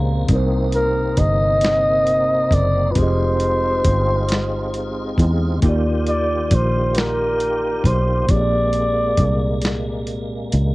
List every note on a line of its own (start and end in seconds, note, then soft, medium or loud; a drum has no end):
0.00 0.26 C#2 medium
0.00 0.22 A#2 medium
0.00 0.27 G#3 medium
0.00 0.23 A#3 medium
0.00 2.92 A#3 medium
0.00 0.24 C4 medium
0.00 2.92 C4 medium
0.00 0.26 G4 medium
0.00 0.27 G#4 medium
0.00 0.28 D5 medium
0.00 0.26 F5 medium
0.00 0.31 A#5 medium
0.24 2.89 C3 medium
0.24 2.91 C4 medium
0.28 1.14 C2 loud
0.28 2.93 C3 medium
0.28 5.58 D#4 medium
0.28 2.92 D#4 medium
0.28 kick loud
0.28 closed hi-hat medium
0.33 2.94 A#4 medium
0.33 2.95 C5 medium
0.72 1.21 A#4 loud
0.72 closed hi-hat medium
1.17 2.48 G1 medium
1.17 2.55 D#5 loud
1.17 kick medium
1.17 closed hi-hat medium
1.61 snare loud
1.61 closed hi-hat medium
2.07 closed hi-hat medium
2.51 2.92 F#1 medium
2.51 2.93 D5 loud
2.51 kick medium
2.51 closed hi-hat medium
2.91 5.57 C4 medium
2.91 5.56 F4 medium
2.91 3.00 B4 medium
2.95 3.81 F1 medium
2.95 5.60 G#3 medium
2.95 5.60 C4 medium
2.95 5.60 F4 medium
2.95 5.59 G4 medium
2.95 5.19 C5 loud
2.95 kick loud
2.95 closed hi-hat medium
3.00 5.60 G#4 medium
3.00 5.62 D#5 medium
3.40 closed hi-hat medium
3.84 5.14 G1 medium
3.84 kick loud
3.84 closed hi-hat medium
4.28 snare loud
4.28 closed hi-hat medium
4.74 closed hi-hat medium
5.18 5.59 E2 loud
5.18 kick medium
5.18 closed hi-hat medium
5.57 8.23 D#3 medium
5.57 8.24 A#3 medium
5.62 6.48 D#2 loud
5.62 8.26 D#3 medium
5.62 8.26 F4 medium
5.62 8.25 F4 medium
5.62 8.26 G4 medium
5.62 8.27 G4 medium
5.62 kick loud
5.62 closed hi-hat medium
5.69 8.28 D5 medium
6.07 6.56 D5 loud
6.07 closed hi-hat medium
6.51 7.81 A#1 medium
6.51 6.99 C5 medium
6.51 kick loud
6.51 closed hi-hat medium
6.95 7.88 A#4 loud
6.95 snare loud
6.95 closed hi-hat medium
7.40 closed hi-hat medium
7.84 8.25 B1 loud
7.84 8.32 C5 medium
7.84 kick medium
7.84 closed hi-hat medium
8.24 10.75 A#2 medium
8.24 10.75 A#3 medium
8.28 9.14 A#1 loud
8.28 10.75 G#3 medium
8.28 10.75 A#3 medium
8.28 10.75 C4 medium
8.28 10.75 G4 medium
8.28 10.07 D5 loud
8.28 kick loud
8.28 closed hi-hat medium
8.33 10.75 G#4 medium
8.33 8.39 C#5 medium
8.41 10.75 D5 medium
8.73 closed hi-hat medium
9.17 10.48 C2 medium
9.17 kick medium
9.17 closed hi-hat medium
9.62 snare loud
9.62 closed hi-hat medium
10.07 closed hi-hat soft
10.52 10.75 C#2 medium
10.52 closed hi-hat medium